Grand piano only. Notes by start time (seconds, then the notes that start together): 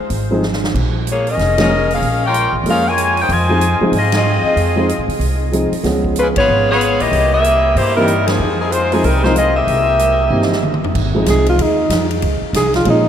0.31 F3 G#3 C4 D#4 G#4
1.57 F3 G#3 A#3 C#4 G#4
2.66 F3 G#3 A#3 C#4 G#4
3.49 F3 G#3 C4 D#4 G#4
3.81 F3 G#3 C4 D#4 G#4
4.76 F3 G#3 C4 D#4 G#4
5.52 F3 G#3 C4 D#4 G#4
5.83 F3 G#3 B3 C#4 G#4
7.97 E3 A#3 C4 D#4 G4
8.93 F3 G#3 C4 D#4 G#4
9.23 F3 G#3 C4 D#4 A#4
10.31 E3 A#3 C4 D#4 G4
11.15 F3 G#3 C4 D#4 G#4
12.84 F3 G#3 A#3 C#4 G#4